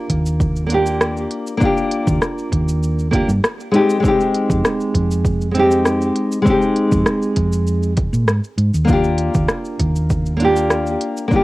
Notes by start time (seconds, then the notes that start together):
Already playing: A#3 D4 F4 G4
0.10 D#2, kick, closed hi-hat
0.26 cabasa
0.40 kick, cabasa
0.56 cabasa
0.66 A#3 D4, closed hi-hat
0.72 F4 G4
0.86 cabasa
1.01 cross-stick, cabasa
1.17 cabasa
1.31 closed hi-hat
1.47 cabasa
1.57 A#3 D4, kick, cabasa
1.63 F4 G4
1.77 cabasa
1.92 closed hi-hat
2.07 D#2, kick, cabasa
2.22 cross-stick, cabasa
2.38 cabasa
2.52 D#2, kick, closed hi-hat
2.69 cabasa
2.83 cabasa
2.99 cabasa
3.11 A#3 D4 F4 G4, kick, closed hi-hat
3.28 G2, cabasa
3.44 cross-stick, cabasa
3.60 cabasa
3.71 G#3 C4 D#4 G4, closed hi-hat
3.90 cabasa
4.00 G#3 C4, kick
4.05 D#4 G4, cabasa
4.20 cabasa
4.35 closed hi-hat
4.50 F2, kick, cabasa
4.65 cross-stick, cabasa
4.81 cabasa
4.94 F2, kick, closed hi-hat
5.11 cabasa
5.25 kick, cabasa
5.41 cabasa
5.51 G#3 C4, closed hi-hat
5.57 D#4 G4
5.71 cabasa
5.85 cross-stick, cabasa
6.01 cabasa
6.16 closed hi-hat
6.32 cabasa
6.42 G#3 C4
6.46 D#4, kick, cabasa
6.50 G4
6.62 cabasa
6.76 closed hi-hat
6.92 F2, kick, cabasa
7.06 cross-stick, cabasa
7.22 cabasa
7.36 F2, kick, closed hi-hat
7.53 cabasa
7.67 cabasa
7.83 cabasa
7.97 kick, closed hi-hat
8.13 A#2, cabasa
8.27 G#2, cross-stick, cabasa
8.44 cabasa
8.58 G#2, closed hi-hat
8.74 D#2, cabasa
8.85 A#3 D4, cabasa
8.89 F4 G4, kick
9.04 cabasa
9.18 closed hi-hat
9.34 D#2, kick, cabasa
9.48 cross-stick, cabasa
9.65 cabasa
9.79 D#2, kick, closed hi-hat
9.96 cabasa
10.10 kick, cabasa
10.26 cabasa
10.36 A#3 D4, closed hi-hat
10.42 F4 G4
10.56 cabasa
10.70 cross-stick, cabasa
10.86 cabasa
11.01 closed hi-hat
11.17 cabasa
11.28 A#3 D4, kick, cabasa
11.33 F4 G4